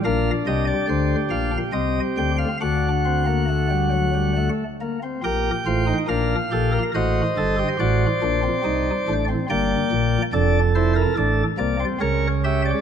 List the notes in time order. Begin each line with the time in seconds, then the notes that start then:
0.05 A#1 A#2 D4 A#4 F5
0.47 C2 C3 G4 D#5
0.67 D5
0.89 D2 D3 C5
1.30 A#1 A#2 F5
1.73 C2 C3 C4 D#5
2.18 D2 D3 G5
2.38 F5
2.61 D2 D3 D4 F#4 F#5
3.05 C4
3.26 A#3
3.48 A3
3.70 G3
3.92 F#3
4.14 G3
4.37 A3
4.81 A#3
5.03 C4
5.24 A#1 A#2 G4 A#4 G5
5.66 A1 A2 F4 C5
5.87 D#4
6.08 A#1 A#2 D4 A#4 F5
6.51 A#1 A#2 G4 A4
6.72 A#4
6.94 A1 A2 F#4 C5 D#5
7.37 G1 G2 A4
7.59 G4
7.79 A1 A2 F#4 D5
8.22 A#1 A#2 D4
8.43 C4
8.64 C2 C3 D#4
9.08 A1 A2 D4
9.29 C4
9.50 G1 G2 A#3 D5 G5
9.92 A#1 A#2
10.33 F1 F2 D4 A4 D5
10.75 E4 C5
10.96 A#4
11.17 A1 A2 D4 A4
11.58 C2 C3 A#3 D5
11.80 C4
12.01 C#2 C#3 C#4 A#4 C#5
12.44 G4 E5
12.65 D5